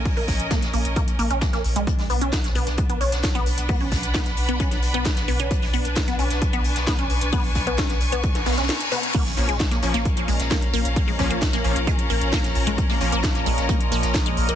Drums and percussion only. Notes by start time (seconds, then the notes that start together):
0.05 kick, closed hi-hat, open hi-hat
0.17 open hi-hat
0.28 kick, snare, closed hi-hat, open hi-hat
0.40 closed hi-hat
0.51 kick, snare, closed hi-hat
0.62 snare, closed hi-hat
0.73 closed hi-hat, open hi-hat
0.85 closed hi-hat
0.96 kick, closed hi-hat
1.08 closed hi-hat
1.19 closed hi-hat, open hi-hat
1.31 closed hi-hat
1.41 kick, snare, closed hi-hat
1.53 snare, closed hi-hat
1.64 closed hi-hat, open hi-hat
1.76 closed hi-hat
1.87 kick, closed hi-hat
1.99 snare, open hi-hat
2.10 closed hi-hat, open hi-hat
2.21 closed hi-hat
2.33 kick, snare, closed hi-hat
2.44 snare, closed hi-hat
2.55 closed hi-hat, open hi-hat
2.67 snare, closed hi-hat
2.77 kick, closed hi-hat
2.90 closed hi-hat
3.01 closed hi-hat, open hi-hat
3.12 snare, closed hi-hat
3.24 kick, snare, closed hi-hat
3.35 closed hi-hat
3.46 closed hi-hat, open hi-hat
3.58 closed hi-hat
3.68 kick, closed hi-hat, open hi-hat
3.80 open hi-hat
3.92 kick, snare, closed hi-hat, open hi-hat
4.03 closed hi-hat
4.14 kick, snare, closed hi-hat
4.25 snare, closed hi-hat
4.37 closed hi-hat, open hi-hat
4.49 closed hi-hat
4.60 kick, closed hi-hat
4.71 snare, closed hi-hat
4.83 closed hi-hat, open hi-hat
4.94 closed hi-hat
5.05 kick, snare, closed hi-hat
5.17 snare, closed hi-hat
5.28 closed hi-hat, open hi-hat
5.40 closed hi-hat
5.51 kick, closed hi-hat
5.62 snare, open hi-hat
5.73 closed hi-hat, open hi-hat
5.85 closed hi-hat
5.95 kick, snare, closed hi-hat
6.08 snare, closed hi-hat
6.19 closed hi-hat, open hi-hat
6.30 snare, closed hi-hat
6.41 kick, closed hi-hat
6.53 closed hi-hat
6.64 closed hi-hat, open hi-hat
6.76 snare, closed hi-hat
6.87 kick, snare, closed hi-hat
6.99 closed hi-hat
7.09 closed hi-hat, open hi-hat
7.21 closed hi-hat
7.33 kick, closed hi-hat, open hi-hat
7.44 open hi-hat
7.55 kick, snare, closed hi-hat, open hi-hat
7.67 closed hi-hat
7.78 kick, snare, closed hi-hat
7.89 snare, closed hi-hat
8.00 closed hi-hat, open hi-hat
8.12 closed hi-hat
8.23 kick, closed hi-hat
8.35 snare, closed hi-hat
8.46 snare, closed hi-hat, open hi-hat
8.52 snare, closed hi-hat
8.57 snare, closed hi-hat
8.63 snare, closed hi-hat
8.69 snare, closed hi-hat, open hi-hat
8.80 closed hi-hat
8.92 snare, closed hi-hat, open hi-hat
9.03 snare, closed hi-hat
9.14 kick, closed hi-hat, crash
9.26 snare, open hi-hat
9.37 closed hi-hat, open hi-hat
9.49 closed hi-hat
9.60 kick, snare, closed hi-hat
9.71 snare, closed hi-hat
9.83 closed hi-hat, open hi-hat
9.94 snare, closed hi-hat
10.05 kick, closed hi-hat
10.17 closed hi-hat
10.28 closed hi-hat, open hi-hat
10.40 snare, closed hi-hat
10.51 kick, snare, closed hi-hat
10.62 closed hi-hat
10.74 closed hi-hat, open hi-hat
10.85 closed hi-hat
10.96 kick, closed hi-hat, open hi-hat
11.08 open hi-hat
11.19 kick, snare, closed hi-hat, open hi-hat
11.31 closed hi-hat
11.42 kick, snare, closed hi-hat
11.53 snare, closed hi-hat
11.64 closed hi-hat, open hi-hat
11.76 closed hi-hat
11.87 kick, closed hi-hat
11.99 closed hi-hat
12.10 closed hi-hat, open hi-hat
12.21 closed hi-hat
12.33 kick, snare, closed hi-hat, open hi-hat
12.44 snare, closed hi-hat
12.55 closed hi-hat, open hi-hat
12.67 closed hi-hat
12.78 kick, closed hi-hat
12.90 snare, open hi-hat
13.00 closed hi-hat, open hi-hat
13.12 closed hi-hat
13.23 kick, snare, closed hi-hat
13.35 snare, closed hi-hat
13.46 closed hi-hat, open hi-hat
13.58 snare, closed hi-hat
13.69 kick, closed hi-hat
13.81 closed hi-hat
13.92 closed hi-hat, open hi-hat
14.03 snare, closed hi-hat
14.14 kick, snare, closed hi-hat
14.26 closed hi-hat
14.37 closed hi-hat, open hi-hat
14.49 closed hi-hat